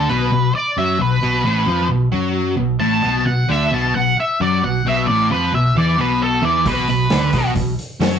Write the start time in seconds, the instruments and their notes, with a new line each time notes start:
0.09 picked electric bass B1, overdriven electric guitar B2, lead electric guitar B4
0.31 picked electric bass B1, overdriven electric guitar B2
0.55 lead electric guitar D5
0.77 picked electric bass F#2, overdriven electric guitar F#3, lead electric guitar E5
0.99 picked electric bass B1, overdriven electric guitar B2, lead electric guitar B4
1.22 picked electric bass B1, overdriven electric guitar B2
1.45 picked electric bass A1, overdriven electric guitar A2
1.66 picked electric bass F2, overdriven electric guitar F3
1.90 picked electric bass B1, overdriven electric guitar B2
2.12 picked electric bass F#2, overdriven electric guitar F#3
2.57 picked electric bass B1, overdriven electric guitar B2
2.80 picked electric bass A1, overdriven electric guitar A2, lead electric guitar A5
3.03 picked electric bass B1, overdriven electric guitar B2
3.26 picked electric bass B1, overdriven electric guitar B2, lead electric guitar F#5
3.48 picked electric bass D2, overdriven electric guitar D3, lead electric guitar E5
3.72 picked electric bass B1, overdriven electric guitar B2, lead electric guitar A5
3.95 picked electric bass B1, overdriven electric guitar B2, lead electric guitar F#5
4.20 lead electric guitar E5
4.40 picked electric bass F#2, overdriven electric guitar F#3, lead electric guitar D5
4.63 picked electric bass B1, overdriven electric guitar B2, lead electric guitar F#5
4.85 picked electric bass B1, overdriven electric guitar B2, lead electric guitar E5
5.07 picked electric bass A1, overdriven electric guitar A2, lead electric guitar D5
5.30 picked electric bass F2, overdriven electric guitar F3, lead electric guitar B4
5.53 picked electric bass B1, overdriven electric guitar B2, lead electric guitar E5
5.75 picked electric bass E2, overdriven electric guitar E3, lead electric guitar D5
5.98 picked electric bass B1, overdriven electric guitar B2, lead electric guitar B4
6.23 lead electric guitar A4
6.42 picked electric bass E2, overdriven electric guitar E3, lead electric guitar D5
6.66 picked electric bass B1, overdriven electric guitar B2, lead electric guitar B4, kick, open hi-hat
6.88 picked electric bass B1, overdriven electric guitar B2, lead electric guitar B4, open hi-hat
7.10 picked electric bass D2, overdriven electric guitar D3, snare, open hi-hat
7.32 picked electric bass B1, overdriven electric guitar B2, kick, open hi-hat
7.55 picked electric bass B1, overdriven electric guitar B2, kick, open hi-hat
7.79 open hi-hat
8.00 picked electric bass F#2, overdriven electric guitar F#3, snare, open hi-hat